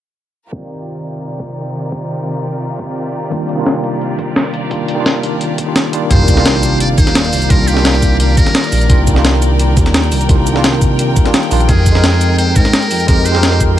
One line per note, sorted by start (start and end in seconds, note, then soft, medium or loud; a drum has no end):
0.52 6.06 C3 medium
0.52 6.06 D#3 medium
0.52 6.06 F4 medium
0.52 6.06 G4 medium
0.52 6.06 A#4 medium
0.52 6.06 D5 medium
0.52 kick loud
1.40 kick loud
1.92 kick loud
2.79 kick loud
3.30 3.54 D#3 medium
3.30 3.55 G3 medium
3.30 3.56 A#3 medium
3.30 3.56 D4 medium
3.30 3.56 F4 loud
3.30 kick loud
3.30 closed hi-hat medium
3.49 closed hi-hat medium
3.55 4.68 D#3 loud
3.55 4.68 G3 medium
3.55 4.69 A#3 medium
3.59 4.70 D4 medium
3.59 4.70 F4 loud
3.66 snare loud
3.66 closed hi-hat medium
3.84 closed hi-hat medium
4.01 closed hi-hat medium
4.19 kick loud
4.19 closed hi-hat medium
4.36 snare loud
4.36 closed hi-hat medium
4.54 closed hi-hat medium
4.69 4.93 D#3 medium
4.69 4.95 G3 medium
4.69 4.95 A#3 medium
4.69 4.96 D4 medium
4.69 4.96 F4 loud
4.69 kick loud
4.69 closed hi-hat medium
4.88 closed hi-hat medium
4.94 5.64 D#3 loud
4.94 5.65 G3 medium
4.94 5.65 A#3 medium
4.99 5.66 D4 medium
4.99 5.67 F4 loud
5.06 snare loud
5.06 closed hi-hat medium
5.23 closed hi-hat medium
5.41 closed hi-hat medium
5.58 kick loud
5.58 closed hi-hat medium
5.66 5.90 D#3 medium
5.66 5.91 G3 medium
5.66 5.91 A#3 medium
5.66 5.91 D4 medium
5.66 5.92 F4 loud
5.76 snare loud
5.76 closed hi-hat medium
5.91 6.08 D#3 medium
5.91 6.08 G3 medium
5.91 6.08 A#3 medium
5.91 6.09 D4 medium
5.91 6.09 F4 loud
5.91 closed hi-hat medium
6.09 6.96 C2 medium
6.09 6.33 D#3 medium
6.09 6.34 G3 medium
6.09 6.35 A#3 medium
6.09 6.35 D4 medium
6.09 6.35 F4 loud
6.09 13.79 A#4 medium
6.09 6.77 C5 loud
6.09 11.65 D5 medium
6.09 8.87 F5 medium
6.09 kick loud
6.09 closed hi-hat loud
6.09 sub drop medium
6.28 kick medium
6.28 closed hi-hat medium
6.28 shaker medium
6.34 7.47 D#3 loud
6.34 7.47 G3 medium
6.34 7.48 A#3 medium
6.34 snare medium
6.38 7.49 D4 medium
6.38 7.49 F4 loud
6.46 snare loud
6.46 closed hi-hat medium
6.55 snare soft
6.63 closed hi-hat medium
6.63 shaker medium
6.80 6.88 D5 loud
6.80 closed hi-hat loud
6.98 7.31 D#2 medium
6.98 7.52 C5 loud
6.98 kick loud
6.98 closed hi-hat medium
6.98 shaker medium
7.07 snare soft
7.07 closed hi-hat soft
7.15 snare loud
7.15 closed hi-hat medium
7.15 shaker soft
7.24 closed hi-hat soft
7.33 7.48 C2 medium
7.33 open hi-hat medium
7.33 shaker medium
7.42 closed hi-hat soft
7.42 shaker soft
7.49 8.36 C2 loud
7.49 7.72 D#3 medium
7.49 7.74 G3 medium
7.49 7.74 A#3 medium
7.49 7.75 D4 medium
7.49 7.75 F4 loud
7.49 7.69 A#4 loud
7.49 kick loud
7.49 closed hi-hat loud
7.68 8.19 G4 loud
7.68 closed hi-hat medium
7.68 shaker medium
7.74 8.86 D#3 loud
7.74 8.87 G3 medium
7.74 8.88 A#3 medium
7.74 snare medium
7.78 8.88 D4 medium
7.78 8.89 F4 loud
7.85 snare loud
7.85 closed hi-hat medium
7.94 snare soft
8.02 kick medium
8.02 closed hi-hat medium
8.02 shaker medium
8.20 8.36 G4 medium
8.20 closed hi-hat loud
8.37 9.03 A#4 medium
8.37 kick loud
8.37 closed hi-hat medium
8.37 shaker medium
8.46 snare soft
8.46 closed hi-hat soft
8.55 snare loud
8.55 closed hi-hat loud
8.55 shaker soft
8.64 closed hi-hat soft
8.72 8.88 A#1 medium
8.72 open hi-hat medium
8.72 shaker medium
8.81 closed hi-hat soft
8.81 shaker soft
8.88 9.75 C2 loud
8.88 9.12 D#3 medium
8.88 9.14 G3 medium
8.88 9.14 A#3 medium
8.88 9.14 D4 medium
8.88 9.15 F4 loud
8.88 13.79 G5 medium
8.88 kick loud
8.88 closed hi-hat medium
9.07 kick medium
9.07 closed hi-hat medium
9.07 shaker medium
9.13 10.26 D#3 loud
9.13 10.26 G3 loud
9.13 10.27 A#3 medium
9.13 snare medium
9.18 10.28 D4 medium
9.18 10.29 F4 loud
9.25 snare loud
9.25 closed hi-hat medium
9.34 snare soft
9.42 closed hi-hat medium
9.42 shaker medium
9.59 closed hi-hat medium
9.77 10.10 D#2 medium
9.77 kick loud
9.77 closed hi-hat medium
9.77 shaker medium
9.86 snare soft
9.86 closed hi-hat soft
9.94 snare loud
9.94 closed hi-hat medium
9.94 shaker soft
10.03 closed hi-hat soft
10.12 10.28 C2 medium
10.12 open hi-hat medium
10.12 shaker medium
10.21 closed hi-hat soft
10.21 shaker soft
10.28 11.15 C2 loud
10.28 10.52 D#3 medium
10.28 10.53 G3 medium
10.28 10.53 A#3 medium
10.28 10.54 D4 medium
10.28 10.54 F4 loud
10.28 kick loud
10.28 closed hi-hat medium
10.47 closed hi-hat medium
10.47 shaker medium
10.53 11.22 D#3 loud
10.53 11.23 G3 medium
10.53 11.24 A#3 medium
10.53 snare medium
10.57 11.24 D4 medium
10.57 11.25 F4 loud
10.64 snare loud
10.64 closed hi-hat medium
10.73 snare soft
10.81 kick medium
10.81 closed hi-hat medium
10.81 shaker medium
10.99 closed hi-hat medium
11.16 kick loud
11.16 closed hi-hat medium
11.16 shaker medium
11.24 11.49 D#3 loud
11.24 11.49 G3 medium
11.24 11.49 A#3 medium
11.24 11.50 D4 medium
11.24 11.50 F4 loud
11.24 snare soft
11.24 closed hi-hat soft
11.34 snare loud
11.34 closed hi-hat medium
11.34 shaker soft
11.43 closed hi-hat soft
11.50 11.67 A#1 medium
11.50 11.66 D#3 loud
11.50 11.66 G3 medium
11.50 11.67 A#3 medium
11.50 11.67 D4 medium
11.50 11.67 F4 loud
11.50 open hi-hat medium
11.50 shaker medium
11.60 closed hi-hat soft
11.60 shaker soft
11.67 12.55 F2 loud
11.67 11.91 G#3 medium
11.67 11.93 C4 medium
11.67 11.93 D#4 medium
11.67 11.93 G4 medium
11.67 12.34 G#4 medium
11.67 11.94 A#4 loud
11.67 kick loud
11.67 closed hi-hat medium
11.86 kick medium
11.86 closed hi-hat medium
11.86 shaker medium
11.92 13.05 G#3 loud
11.92 13.05 C4 medium
11.92 13.06 D#4 medium
11.92 snare medium
11.97 13.08 A#4 loud
11.97 13.07 G5 medium
12.04 snare loud
12.04 closed hi-hat medium
12.13 snare soft
12.21 closed hi-hat medium
12.21 shaker medium
12.38 12.57 C5 loud
12.38 closed hi-hat medium
12.56 12.89 G#2 medium
12.56 13.08 A#4 loud
12.56 kick loud
12.56 closed hi-hat medium
12.56 shaker medium
12.65 snare soft
12.65 closed hi-hat soft
12.73 snare loud
12.73 closed hi-hat medium
12.73 shaker soft
12.82 closed hi-hat soft
12.91 13.07 F2 medium
12.91 open hi-hat medium
12.91 shaker medium
13.00 closed hi-hat soft
13.00 shaker soft
13.07 13.79 F2 loud
13.07 13.31 G#3 medium
13.07 13.32 C4 medium
13.07 13.33 D#4 medium
13.07 13.33 G4 medium
13.07 13.27 A#4 loud
13.07 13.33 A#4 loud
13.07 kick loud
13.07 closed hi-hat medium
13.25 13.60 C5 loud
13.25 closed hi-hat medium
13.25 shaker medium
13.32 13.79 G#3 loud
13.32 13.79 C4 medium
13.32 13.79 D#4 medium
13.32 snare medium
13.36 13.79 G4 medium
13.36 13.79 A#4 loud
13.43 snare loud
13.43 closed hi-hat medium
13.52 snare soft
13.61 kick medium
13.61 closed hi-hat medium
13.61 shaker medium